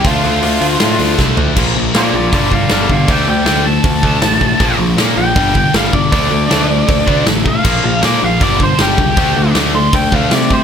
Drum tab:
CC |--------|x-------|--------|--------|
HH |oooooo--|--o-o-o-|o-o-o-o-|o-o-o-o-|
SD |----o-o-|--o---o-|--o---o-|--o---o-|
FT |-------o|--------|--------|--------|
BD |o-----o-|o---oo-o|o---oo-o|o---oo-o|

CC |--------|x-------|--------|
HH |o-o-o-o-|--o-o-o-|o-o-o-o-|
SD |--o---o-|--o---o-|--o---o-|
FT |--------|--------|--------|
BD |o---oo-o|o---oo-o|o---oo-o|